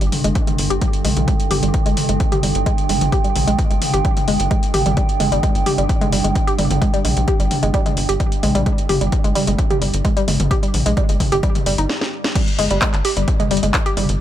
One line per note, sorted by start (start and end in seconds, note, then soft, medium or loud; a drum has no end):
0.00 0.10 G1 medium
0.00 11.89 G2 medium
0.00 11.89 D3 medium
0.00 0.12 G3 medium
0.00 11.89 G5 medium
0.00 closed hi-hat medium
0.12 open hi-hat loud
0.12 mid tom medium
0.24 0.33 G1 medium
0.24 0.31 G#3 loud
0.24 closed hi-hat medium
0.35 kick loud
0.35 closed hi-hat medium
0.47 0.58 G#3 medium
0.47 closed hi-hat medium
0.47 mid tom medium
0.58 0.68 G1 loud
0.58 open hi-hat loud
0.70 0.80 G1 medium
0.70 0.75 G4 loud
0.70 closed hi-hat medium
0.81 0.93 G3 medium
0.81 kick loud
0.81 closed hi-hat medium
0.93 closed hi-hat medium
1.05 1.14 A#1 loud
1.05 1.12 G#3 loud
1.05 open hi-hat loud
1.05 mid tom medium
1.17 1.26 A#1 medium
1.17 closed hi-hat medium
1.17 mid tom medium
1.28 1.39 G#3 medium
1.28 kick loud
1.28 closed hi-hat medium
1.40 closed hi-hat medium
1.51 1.61 G1 medium
1.51 1.55 G4 loud
1.51 open hi-hat loud
1.51 mid tom medium
1.63 1.72 G1 medium
1.63 1.73 G3 medium
1.63 closed hi-hat medium
1.74 kick loud
1.74 closed hi-hat medium
1.86 1.95 G1 medium
1.86 1.93 G#3 loud
1.86 closed hi-hat medium
1.97 open hi-hat loud
1.97 mid tom medium
2.09 2.18 G1 medium
2.09 2.20 G#3 medium
2.09 closed hi-hat medium
2.20 kick loud
2.20 closed hi-hat medium
2.32 2.36 G4 loud
2.32 closed hi-hat medium
2.32 mid tom medium
2.43 2.53 G1 medium
2.43 2.55 G3 medium
2.43 open hi-hat loud
2.55 2.64 G1 medium
2.55 closed hi-hat medium
2.66 2.74 G#3 loud
2.66 kick loud
2.66 closed hi-hat medium
2.78 closed hi-hat medium
2.89 2.99 G1 medium
2.89 3.01 G#3 medium
2.89 open hi-hat loud
2.89 mid tom medium
3.01 3.10 G1 medium
3.01 closed hi-hat medium
3.01 mid tom medium
3.12 3.17 G4 loud
3.12 kick loud
3.12 closed hi-hat medium
3.24 3.35 G3 medium
3.24 closed hi-hat medium
3.36 3.45 A#1 medium
3.36 open hi-hat loud
3.36 mid tom medium
3.47 3.57 A#1 medium
3.47 3.54 G#3 loud
3.47 closed hi-hat medium
3.59 kick loud
3.59 closed hi-hat medium
3.70 3.80 G1 medium
3.70 3.81 G#3 medium
3.70 closed hi-hat medium
3.82 open hi-hat loud
3.82 mid tom medium
3.94 4.03 G1 medium
3.94 3.98 G4 loud
3.94 closed hi-hat medium
4.05 4.16 G3 medium
4.05 kick loud
4.05 closed hi-hat medium
4.17 closed hi-hat medium
4.17 mid tom medium
4.28 4.37 G1 medium
4.28 4.35 G#3 loud
4.28 open hi-hat loud
4.40 4.49 G1 medium
4.40 closed hi-hat medium
4.51 4.62 G#3 medium
4.51 kick loud
4.51 closed hi-hat medium
4.63 closed hi-hat medium
4.74 4.84 G#1 medium
4.74 4.79 G4 loud
4.74 open hi-hat loud
4.74 mid tom medium
4.86 4.95 G#1 medium
4.86 4.96 G3 medium
4.86 closed hi-hat medium
4.86 mid tom medium
4.97 5.08 G3 medium
4.97 kick loud
4.97 closed hi-hat medium
5.09 closed hi-hat medium
5.20 5.30 G1 medium
5.20 5.28 G#3 loud
5.20 open hi-hat loud
5.20 mid tom medium
5.32 5.41 G1 medium
5.32 5.39 G3 loud
5.32 closed hi-hat medium
5.43 5.55 G#3 medium
5.43 kick loud
5.43 closed hi-hat medium
5.55 5.64 G1 medium
5.55 closed hi-hat medium
5.66 5.71 G4 loud
5.66 open hi-hat loud
5.66 mid tom medium
5.78 5.87 G1 medium
5.78 5.89 G3 medium
5.78 closed hi-hat medium
5.89 kick loud
5.89 closed hi-hat medium
6.01 6.08 G#3 loud
6.01 closed hi-hat medium
6.01 mid tom loud
6.12 6.22 G1 medium
6.12 6.20 G3 loud
6.12 open hi-hat loud
6.24 6.33 G1 medium
6.24 6.35 G#3 medium
6.24 closed hi-hat medium
6.35 kick loud
6.35 closed hi-hat medium
6.47 6.52 G4 loud
6.47 closed hi-hat medium
6.59 6.68 G1 medium
6.59 6.70 G3 medium
6.59 open hi-hat loud
6.59 mid tom loud
6.70 6.80 G1 medium
6.70 closed hi-hat medium
6.70 mid tom medium
6.82 6.89 G#3 loud
6.82 kick loud
6.82 closed hi-hat medium
6.94 7.01 G3 loud
6.94 closed hi-hat medium
7.05 7.14 A#1 loud
7.05 7.16 G#3 medium
7.05 open hi-hat loud
7.05 mid tom medium
7.17 7.26 A#1 medium
7.17 closed hi-hat medium
7.28 7.32 G4 loud
7.28 kick loud
7.28 closed hi-hat medium
7.40 7.49 G1 medium
7.40 7.50 G3 medium
7.40 closed hi-hat medium
7.51 open hi-hat loud
7.51 mid tom medium
7.63 7.72 G1 medium
7.63 7.70 G#3 loud
7.63 closed hi-hat medium
7.74 7.81 G3 loud
7.74 kick loud
7.74 closed hi-hat medium
7.86 7.96 G#3 medium
7.86 closed hi-hat medium
7.86 mid tom loud
7.97 8.07 G1 loud
7.97 open hi-hat loud
8.09 8.18 G1 medium
8.09 8.13 G4 loud
8.09 closed hi-hat medium
8.20 8.31 G3 medium
8.20 kick loud
8.20 closed hi-hat medium
8.32 closed hi-hat medium
8.43 8.53 A#1 medium
8.43 8.51 G#3 loud
8.43 open hi-hat loud
8.43 mid tom medium
8.55 8.64 A#1 medium
8.55 8.62 G3 loud
8.55 closed hi-hat medium
8.55 mid tom medium
8.66 8.78 G#3 medium
8.66 kick loud
8.66 closed hi-hat medium
8.78 closed hi-hat medium
8.89 8.99 G1 medium
8.89 8.94 G4 loud
8.89 open hi-hat loud
8.89 mid tom medium
9.01 9.10 G1 medium
9.01 9.12 G3 medium
9.01 closed hi-hat medium
9.12 kick loud
9.12 closed hi-hat medium
9.24 9.33 G1 medium
9.24 9.31 G#3 loud
9.24 closed hi-hat medium
9.35 9.43 G3 loud
9.35 open hi-hat loud
9.35 mid tom medium
9.47 9.56 G1 medium
9.47 9.58 G#3 medium
9.47 closed hi-hat medium
9.59 kick loud
9.59 closed hi-hat medium
9.70 9.75 G4 loud
9.70 closed hi-hat medium
9.70 mid tom loud
9.82 9.91 G1 medium
9.82 9.93 G3 medium
9.82 open hi-hat loud
9.94 10.03 G1 medium
9.94 closed hi-hat medium
10.05 10.12 G#3 loud
10.05 kick loud
10.05 closed hi-hat medium
10.17 10.24 G3 loud
10.17 closed hi-hat medium
10.28 10.38 G1 medium
10.28 10.39 G#3 medium
10.28 open hi-hat loud
10.28 mid tom medium
10.40 10.49 G1 medium
10.40 closed hi-hat medium
10.40 mid tom medium
10.51 10.55 G4 loud
10.51 kick loud
10.51 closed hi-hat medium
10.63 10.73 G3 medium
10.63 closed hi-hat medium
10.74 10.84 A#1 loud
10.74 open hi-hat loud
10.74 mid tom medium
10.86 10.95 A#1 medium
10.86 10.93 G#3 loud
10.86 closed hi-hat medium
10.97 11.05 G3 loud
10.97 kick loud
10.97 closed hi-hat medium
11.09 11.18 G1 medium
11.09 11.20 G#3 medium
11.09 closed hi-hat medium
11.20 kick medium
11.20 open hi-hat loud
11.20 mid tom medium
11.32 11.41 G1 medium
11.32 11.36 G4 loud
11.32 closed hi-hat medium
11.43 11.55 G3 medium
11.43 kick loud
11.43 closed hi-hat medium
11.55 closed hi-hat medium
11.55 mid tom medium
11.66 11.76 G1 medium
11.66 11.74 G3 loud
11.66 open hi-hat loud
11.78 11.87 G1 medium
11.78 11.89 D#4 medium
11.78 closed hi-hat medium
11.89 snare medium
12.01 snare medium
12.24 snare medium
12.35 14.21 G2 medium
12.35 14.21 D3 medium
12.35 12.47 G3 medium
12.35 kick loud
12.35 closed hi-hat medium
12.35 crash loud
12.48 closed hi-hat medium
12.59 12.68 G1 loud
12.59 12.66 G#3 loud
12.59 open hi-hat loud
12.70 12.80 G1 medium
12.70 12.78 G3 loud
12.70 closed hi-hat medium
12.82 12.93 G#3 medium
12.82 kick loud
12.82 clap loud
12.82 closed hi-hat medium
12.94 13.03 G1 medium
12.94 clap soft
12.94 closed hi-hat medium
13.05 13.09 G4 loud
13.05 open hi-hat loud
13.17 13.26 G1 medium
13.17 13.27 G3 medium
13.17 closed hi-hat medium
13.28 kick loud
13.28 closed hi-hat medium
13.40 13.47 G#3 loud
13.40 closed hi-hat medium
13.40 mid tom medium
13.51 13.61 G1 medium
13.51 13.58 G3 loud
13.51 open hi-hat loud
13.57 closed hi-hat medium
13.63 13.72 G1 medium
13.63 13.73 G#3 medium
13.63 closed hi-hat medium
13.74 kick loud
13.74 clap loud
13.74 closed hi-hat medium
13.86 13.90 G4 loud
13.86 closed hi-hat medium
13.97 14.07 G1 loud
13.97 14.08 G3 medium
13.97 open hi-hat loud
13.97 mid tom medium
14.09 14.18 G1 medium
14.09 closed hi-hat medium